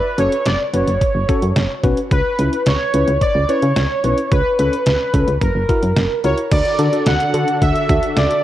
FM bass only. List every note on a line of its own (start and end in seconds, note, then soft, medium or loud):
0.19 0.28 F#1 medium
0.46 0.56 F#1 loud
0.74 0.84 F#1 medium
0.87 0.97 F#1 loud
1.15 1.25 F#1 medium
1.42 1.52 F#2 loud
1.56 1.66 F#1 loud
1.84 1.94 B1 medium
2.11 2.21 C#2 loud
2.39 2.49 C#2 loud
2.66 2.76 C#2 medium
2.94 3.04 C#2 medium
3.08 3.18 C#2 loud
3.35 3.45 C#2 loud
3.63 3.73 C#3 medium
3.76 3.86 C#2 loud
4.04 4.14 B1 medium
4.31 4.41 C#2 loud
4.59 4.69 C#2 loud
4.86 4.96 C#2 medium
5.14 5.24 C#2 loud
5.28 5.38 C#2 loud
5.42 5.52 F#1 loud
5.55 5.65 F#1 medium
5.83 5.93 F#2 medium
5.96 6.06 F#1 loud
6.24 6.34 C#2 medium
6.52 6.62 D2 loud
6.79 6.89 D3 loud
7.06 7.16 D2 loud
7.34 7.44 D3 loud
7.62 7.72 D2 loud
7.89 7.99 D2 medium
8.17 8.27 C#2 medium